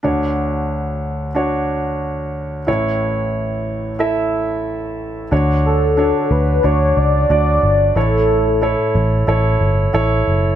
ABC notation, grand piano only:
X:1
M:4/4
L:1/8
Q:1/4=91
K:D
V:1 name="Grand piano"
[DFc]4 [DFc]4 | [EAc]4 [EAe]4 | [DFc]2 [DFc]2 [DFc]2 [DFd]2 | [EAc]2 [EAc]2 [EAc]2 [EAc]2 |]
V:2 name="Grand piano" clef=bass
[D,,D,]8 | [A,,,A,,]8 | D,3 z4 z | A,,3 z4 z |]